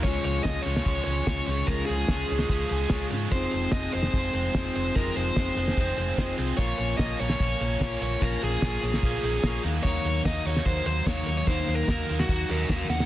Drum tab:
HH |--x---x---x---x-|--x---x---x---x-|--x---x---x---x-|--x---x---x---x-|
SD |----o--o----o---|----o--o----o---|----o--o----o---|----o--o----o---|
BD |o---o---o---o---|o---o---o---o---|o---o---o---o---|o---o---o---o---|

HH |--x---x---x---x-|--x---x---x---x-|--x---x---x---x-|--x---x---x-----|
SD |----o--o----o---|----o--o----o---|----o--o----o---|----o--o----o-oo|
BD |o---o---o---o---|o---o---o---o---|o---o---o---o---|o---o---o---o---|